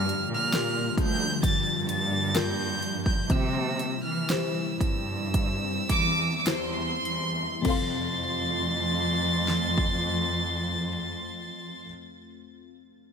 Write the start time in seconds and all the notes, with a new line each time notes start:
Already playing: G2 D3 F3 G3 A#3 F4 F6
0.09 closed hi-hat
0.31 A#2 F6
0.53 F4 G4 A#4, snare, closed hi-hat
0.97 D2, kick, closed hi-hat
1.02 G6
1.43 G2 A6, kick, closed hi-hat
1.89 A6, closed hi-hat
2.35 F4 G4 A#4 G6, snare, closed hi-hat
2.82 closed hi-hat
3.06 G6, kick
3.28 C3 G3 C4 E4 E6, kick, closed hi-hat
3.79 closed hi-hat
4.04 E3 F6
4.29 E4 G4 C5 E6, snare, closed hi-hat
4.81 G2 E6, kick, closed hi-hat
5.34 kick, closed hi-hat
5.88 E2 D6, kick, closed hi-hat
6.37 D6
6.46 E2 E4 G4 C5 C6, snare, closed hi-hat
7.05 E2, closed hi-hat
7.62 F2 C3 A3 C4 A4 C6 A6, kick, crash
7.66 F4 C5 F5
7.70 C6
9.48 snare
9.78 kick